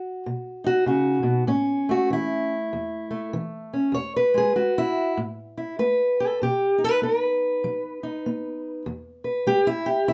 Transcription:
Already playing: D#3 F#4
0.26 B2
0.64 D#4 F#4
0.86 C#3 F#4
1.23 B2
1.47 A2 C#4
1.89 A3 F#4
2.10 E3 E4
2.73 E2
3.11 A3
3.33 E3
3.73 C#4
3.92 E2 C#5
4.16 B4
4.34 G#3 G#4
4.56 G#3 F#4
4.78 E4
5.17 A2
5.58 E4
5.79 A3 B4
6.20 A4
6.42 B2 G4
6.78 D#4
6.84 B4
7.02 B3 B4
7.64 F#3
8.03 D#4
8.26 B3
8.86 E2
9.24 B4
9.47 G#3 G4
9.67 E4
9.86 G4
10.08 E2 E4

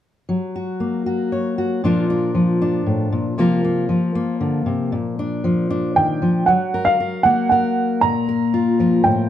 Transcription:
0.29 F#3
0.56 F#4
0.80 A#3
1.06 F#4
1.32 C#5
1.58 F#4
1.84 A#2 F3 D4 F4 A#4
2.10 D4
2.35 F3
2.62 D4
2.86 A2
3.12 A#2
3.38 C3 F3 A#3 F4 A#4
3.64 A#3
3.89 F3
4.15 A#3
4.41 D3
4.66 C3
4.92 A#2
5.19 D4
5.44 F3
5.70 D4
5.96 D#3 G5
6.22 F3
6.46 F#3 F#5
6.74 A#4
6.85 F5
7.00 A#4
7.23 A#3 A#4 F#5
7.49 A#4 F#5
8.01 A#2 A#5
8.29 A#4
8.54 F4
8.79 F3 A#4
9.04 A2 G5

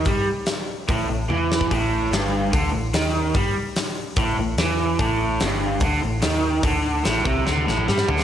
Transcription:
0.05 G2 G3, kick, open hi-hat
0.46 snare, open hi-hat
0.88 A1 A2, kick, open hi-hat
1.09 A1 A2
1.29 E2 E3, high tom
1.52 snare
1.61 kick
1.71 A1 A2, kick, open hi-hat
2.11 G1 G2, snare, open hi-hat
2.52 D2 D3, kick, open hi-hat
2.72 A1 A2
2.93 D#2 D#3, snare, open hi-hat
3.34 G2 G3, kick, open hi-hat
3.76 snare, open hi-hat
4.16 A1 A2, kick, open hi-hat
4.37 A1 A2
4.57 E2 E3, snare, open hi-hat
4.99 A1 A2, kick, open hi-hat
5.40 G1 G2, snare, open hi-hat
5.80 D2 D3, kick, open hi-hat
6.03 A1 A2
6.22 D#2 D#3, snare, open hi-hat
6.63 D2 D3, kick, open hi-hat
7.04 A1 A2, snare, open hi-hat
7.25 C2 C3, kick
7.46 D2 D3, snare
7.58 high tom
7.66 A1 A2, snare
7.78 mid tom
7.87 G2 G3, snare
7.98 snare
8.07 D2 D3, floor tom
8.19 snare

